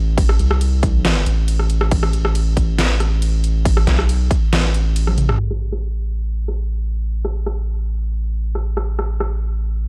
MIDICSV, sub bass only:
0, 0, Header, 1, 2, 480
1, 0, Start_track
1, 0, Key_signature, 0, "minor"
1, 0, Tempo, 434783
1, 195, Time_signature, 4, 2, 24, 8
1, 10910, End_track
2, 0, Start_track
2, 0, Title_t, "Sub bass"
2, 0, Program_c, 0, 38
2, 0, Note_on_c, 0, 33, 101
2, 416, Note_off_c, 0, 33, 0
2, 434, Note_on_c, 0, 36, 100
2, 1376, Note_off_c, 0, 36, 0
2, 1393, Note_on_c, 0, 33, 95
2, 2096, Note_off_c, 0, 33, 0
2, 2114, Note_on_c, 0, 33, 104
2, 2817, Note_off_c, 0, 33, 0
2, 2834, Note_on_c, 0, 33, 99
2, 4256, Note_off_c, 0, 33, 0
2, 4274, Note_on_c, 0, 35, 100
2, 4736, Note_off_c, 0, 35, 0
2, 4995, Note_on_c, 0, 33, 99
2, 5697, Note_off_c, 0, 33, 0
2, 5714, Note_on_c, 0, 33, 104
2, 5936, Note_off_c, 0, 33, 0
2, 5955, Note_on_c, 0, 33, 86
2, 10910, Note_off_c, 0, 33, 0
2, 10910, End_track
0, 0, End_of_file